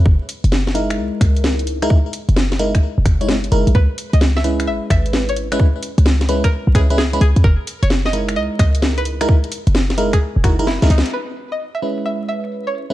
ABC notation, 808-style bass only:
X:1
M:4/4
L:1/16
Q:"Swing 16ths" 1/4=130
K:C#dor
V:1 name="808-style bass" clef=bass
F,,, z2 F,,,4- F,,, C,, z C,,6 | z3 F,,,4- F,,, z E,,, F,,,4 F,,, A,,, | C,, z2 C,,4- C,, G,,, z G,,,6 | z3 C,,4- C,, z B,,, C,,4 C,, E,, |
F,,, z2 F,,,4- F,,, C,, z C,,6 | z3 F,,,4- F,,, z E,,, F,,,3 C,, C,, z | z16 |]